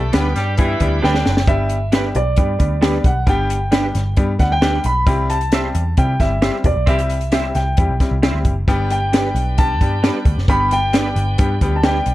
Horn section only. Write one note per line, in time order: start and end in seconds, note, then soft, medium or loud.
0.13 0.31 B3 medium
0.13 0.31 B4 medium
0.35 0.53 G3 medium
0.35 0.54 G4 loud
0.58 1.00 E3 loud
0.58 1.00 E4 loud
1.02 1.34 D3 medium
1.02 1.34 D4 loud
6.87 7.01 E3 medium
6.87 7.01 C4 medium
6.87 7.01 G4 loud